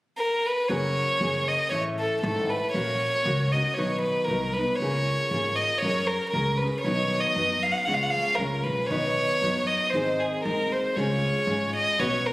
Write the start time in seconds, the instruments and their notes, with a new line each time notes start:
0.18 violin A#4
0.46 violin B4
0.69 upright bass F#1, nylon-string guitar F#3 A#3 C#4 F#4 G#4, violin C#5
1.20 upright bass F#1, nylon-string guitar A#3 C#4 F#4 G#4
1.48 violin D#5
1.70 upright bass A1, nylon-string guitar A2 E3 A3 C#4 E4 A4, violin C#5
1.99 violin A4
2.21 upright bass G#1, nylon-string guitar A3 C#4 E4 A4, violin A4
2.49 violin B4
2.72 upright bass A#1, nylon-string guitar A#3 C#4 F#4 A#4, violin C#5
3.25 upright bass C#2, nylon-string guitar A#3 C#4 F#4 A#4
3.52 nylon-string guitar F#4 A#4, violin D#5
3.56 nylon-string guitar C#4
3.74 upright bass B1, nylon-string guitar B2 D#3 F#3 B3, violin C#5
3.78 nylon-string guitar D#4 B4
4.01 violin B4
4.25 upright bass C2, nylon-string guitar F#3, violin A#4
4.29 nylon-string guitar B3 D#4 B4
4.53 violin B4
4.58 nylon-string guitar F#3 B3 D#4 B4
4.75 violin C#5
4.80 upright bass C#2, nylon-string guitar C#3 A#3 C#4 F4 G#4
5.31 upright bass G#1, nylon-string guitar A#3 C#4 F4 G#4
5.56 violin D#5
5.78 violin C#5
5.82 upright bass F#2, nylon-string guitar F#3 C#4 G#4 A#4
6.07 violin A#4
6.29 upright bass C#2, violin A#4
6.35 nylon-string guitar F#3 C#4 G#4 A#4
6.57 violin B4
6.62 nylon-string guitar C#4 G#4 A#4
6.81 upright bass B1, violin C#5
6.85 nylon-string guitar B2 D#3 F#3 B3 D#4 B4
7.20 violin D#5
7.36 upright bass F#2, nylon-string guitar F#3 B3 D#4 B4
7.63 violin F5
7.72 violin F#5
7.78 violin F5
7.85 upright bass C#2, nylon-string guitar C#3 G#3 C#4 F4 C#5, violin F#5
7.94 violin F5
8.03 violin F#5
8.10 violin F5
8.15 upright bass D#2
8.35 upright bass C#2, nylon-string guitar G#3, violin A#4
8.39 nylon-string guitar C#4 F4 C#5
8.63 upright bass B1, violin B4
8.87 upright bass B1, nylon-string guitar B2 D#3 F#3, violin C#5
8.91 nylon-string guitar B3 D#4 B4
9.42 upright bass F#2, nylon-string guitar F#3 B3 D#4 B4
9.67 violin D#5
9.90 upright bass G#1, violin C5
9.94 nylon-string guitar G#2 D#3 G#3 C4 D#4 G#4
10.20 violin G#4
10.43 upright bass D#2, nylon-string guitar G#3 C4 D#4 G#4, violin A#4
10.72 violin C5
10.96 upright bass C#2, nylon-string guitar C#3 G#3 C#4 F4 G#4, violin C#5
11.47 upright bass G#1, nylon-string guitar G#3 C#4 F4 G#4
11.76 violin D#5
11.99 upright bass B1, nylon-string guitar B3 C#4 F#4 B4, violin C#5
12.26 violin A#4